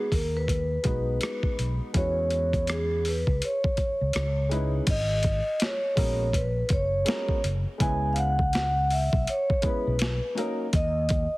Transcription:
0.00 0.10 G#4 medium
0.12 0.76 D#2 medium
0.12 0.36 A#4 medium
0.12 kick medium
0.12 open hi-hat soft
0.37 1.55 B4 medium
0.48 kick medium
0.48 closed hi-hat medium
0.83 1.17 B1 medium
0.83 1.88 G#3 medium
0.83 1.89 B3 soft
0.83 1.89 D#4 soft
0.83 1.89 F#4 medium
0.83 1.90 B4 medium
0.83 kick medium
0.83 closed hi-hat medium
1.21 cross-stick loud
1.21 closed hi-hat medium
1.43 kick medium
1.59 1.78 B1 medium
1.59 closed hi-hat medium
1.93 3.23 E2 medium
1.93 2.98 G#3 medium
1.93 2.99 C#4 medium
1.93 2.99 E4 medium
1.93 2.99 F#4 medium
1.93 3.00 B4 medium
1.93 2.65 C#5 loud
1.93 kick medium
1.93 closed hi-hat medium
2.30 closed hi-hat medium
2.53 kick medium
2.53 closed hi-hat soft
2.67 3.07 G#4 medium
2.67 cross-stick loud
2.67 closed hi-hat medium
3.05 3.44 B4 medium
3.05 open hi-hat medium
3.27 3.40 C#2 medium
3.27 kick medium
3.42 4.49 C#5 medium
3.42 closed hi-hat medium
3.64 kick medium
3.77 kick medium
3.77 closed hi-hat medium
4.01 4.13 C#2 medium
4.13 4.79 C#2 medium
4.13 cross-stick loud
4.13 closed hi-hat medium
4.49 4.87 G#3 medium
4.49 4.87 C#4 medium
4.49 4.88 D#4 medium
4.49 4.88 E4 medium
4.49 4.88 B4 medium
4.49 closed hi-hat medium
4.87 5.40 G#1 loud
4.87 5.58 D#5 loud
4.87 kick loud
4.87 closed hi-hat medium
4.87 crash medium
5.23 kick medium
5.23 closed hi-hat medium
5.60 6.37 C#5 medium
5.60 snare loud
5.60 closed hi-hat medium
5.96 6.62 A#1 medium
5.96 6.25 G#3 medium
5.96 6.25 B3 medium
5.96 6.25 C#4 medium
5.96 6.26 F#4 medium
5.96 6.26 A#4 medium
5.96 kick medium
5.96 open hi-hat medium
6.33 6.72 B4 medium
6.33 kick medium
6.33 closed hi-hat loud
6.69 7.03 F#1 medium
6.69 7.41 C#5 medium
6.69 kick medium
6.69 closed hi-hat medium
7.05 7.34 G#3 medium
7.05 7.35 B3 medium
7.05 7.35 C#4 medium
7.05 7.35 F#4 medium
7.05 7.36 A#4 medium
7.05 snare loud
7.05 closed hi-hat medium
7.29 kick medium
7.44 7.64 F#1 medium
7.44 closed hi-hat medium
7.78 9.09 C#2 loud
7.78 8.34 G#3 medium
7.78 8.34 B3 medium
7.78 8.35 C#4 medium
7.78 8.35 E4 medium
7.78 8.35 B4 medium
7.78 8.13 G#5 loud
7.78 kick loud
7.78 closed hi-hat medium
8.13 8.17 F5 medium
8.13 closed hi-hat medium
8.18 8.54 F#5 loud
8.39 kick medium
8.53 8.92 F#5 loud
8.53 snare loud
8.53 closed hi-hat medium
8.91 9.29 E5 medium
8.91 open hi-hat medium
9.13 9.25 B1 medium
9.13 kick medium
9.27 9.65 C#5 medium
9.27 closed hi-hat loud
9.50 kick medium
9.62 9.91 G#3 medium
9.62 9.91 B3 medium
9.62 9.92 C#4 medium
9.62 9.92 E4 medium
9.62 10.33 B4 medium
9.62 9.93 B4 medium
9.62 kick medium
9.62 closed hi-hat medium
9.87 10.19 B1 medium
9.99 snare loud
9.99 closed hi-hat medium
10.35 10.64 F#3 medium
10.35 10.64 A#3 medium
10.35 10.65 C#4 medium
10.35 10.65 D#4 medium
10.35 10.66 A#4 medium
10.35 closed hi-hat medium
10.73 11.25 D#2 loud
10.73 11.38 D#5 loud
10.73 kick loud
10.73 closed hi-hat medium
11.09 kick medium
11.09 closed hi-hat medium

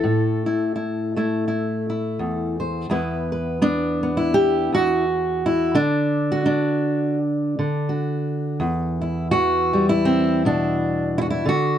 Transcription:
0.00 2.18 A2 medium
0.00 0.46 E4 medium
0.00 2.90 A4 medium
0.46 0.74 E4 soft
0.76 1.16 E4 soft
1.16 2.86 A3 medium
1.16 1.47 E4 soft
1.48 1.89 E4 soft
1.90 2.87 E4 soft
2.19 2.88 E2 medium
2.60 2.86 C5 soft
2.90 4.71 E2 medium
2.90 3.61 B3 soft
2.90 3.62 E4 soft
2.90 3.32 B4 soft
3.32 4.17 B4 soft
3.62 4.03 B3 medium
3.62 4.89 D4 medium
4.03 5.74 B3 soft
4.17 5.03 E4 medium
4.34 4.74 G4 loud
4.72 5.74 E2 medium
4.72 5.75 F#4 medium
5.46 5.75 E4 medium
5.75 7.58 D3 medium
5.75 6.45 D4 medium
6.32 7.18 F#4 medium
6.46 7.89 D4 medium
7.59 8.60 D3 medium
7.89 8.57 F#4 soft
8.60 11.45 E2 medium
9.01 9.31 E4 soft
9.31 11.42 E3 medium
9.31 9.88 F#4 loud
9.73 11.46 G3 soft
9.89 10.75 E4 medium
10.05 10.45 C4 medium
10.45 11.42 B2 medium
10.45 11.46 D4 medium
11.18 11.21 E4 medium
11.18 11.27 F#4 medium
11.30 11.47 E4 medium
11.46 11.78 D3 medium
11.46 11.78 F#4 medium

